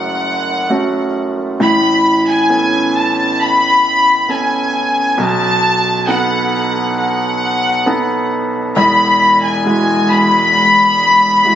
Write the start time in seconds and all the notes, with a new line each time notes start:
Already playing: F#1 F#2 A3 C#4 F#4 F#5
0.70 A3 C#4 F#4
1.60 A1 A2 B5
2.29 G#5
2.50 B3 C#4 A4
2.96 A5
3.41 B5
4.29 B3 C#4 A4 G#5
5.18 B1 B2 A5
6.07 B3 D#4 A4 F#5
6.98 F#5
7.86 B3 D#4 A4
8.76 E1 E2 B5
9.44 G#5
9.66 G#3 E4 F#4
10.11 B5
11.45 G#3 E4 F#4